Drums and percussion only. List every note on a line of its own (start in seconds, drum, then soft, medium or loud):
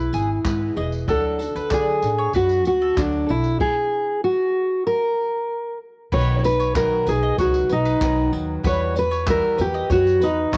0.13 tambourine medium
0.13 tambourine soft
0.45 kick loud
0.45 clap loud
0.45 tambourine medium
0.76 tambourine medium
0.92 tambourine soft
1.08 kick loud
1.08 tambourine soft
1.39 tambourine medium
1.39 tambourine soft
1.56 tambourine soft
1.71 kick loud
1.71 clap loud
1.71 tambourine medium
2.02 tambourine medium
2.02 tambourine soft
2.33 kick medium
2.33 tambourine medium
2.49 tambourine soft
2.65 tambourine medium
2.65 tambourine soft
2.97 kick loud
2.97 clap loud
2.97 tambourine medium
3.29 tambourine medium
3.44 tambourine soft
3.60 kick loud
3.60 crash medium
6.12 kick loud
6.12 crash loud
6.12 tambourine soft
6.44 tambourine medium
6.60 tambourine soft
6.75 kick loud
6.75 clap loud
6.75 tambourine medium
7.07 tambourine soft
7.07 tambourine medium
7.38 kick loud
7.38 tambourine soft
7.54 tambourine soft
7.69 tambourine medium
7.69 tambourine soft
7.85 tambourine soft
8.01 kick medium
8.01 clap loud
8.01 tambourine medium
8.33 tambourine medium
8.64 kick loud
8.64 tambourine soft
8.96 tambourine medium
9.13 tambourine soft
9.27 kick loud
9.27 clap loud
9.27 tambourine medium
9.58 tambourine medium
9.75 tambourine soft
9.90 kick loud
9.90 tambourine medium
10.07 tambourine soft
10.21 tambourine medium
10.21 tambourine soft
10.53 kick loud
10.53 clap loud